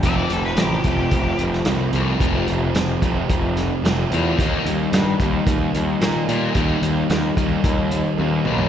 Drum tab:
HH |x-x-x-x-x-x-x-x-|x-x-x-x-x-x-x-x-|x-x-x-x-x-x-x-x-|x-x-x-x-x-x-----|
SD |----o------oo---|----o-----o-o---|----o-------o---|----o-----------|
T1 |----------------|----------------|----------------|------------o---|
T2 |----------------|----------------|----------------|--------------o-|
FT |----------------|----------------|----------------|---------------o|
BD |o-----o-o-------|o-----o-o-------|o-----o-o-------|o-----o-o-------|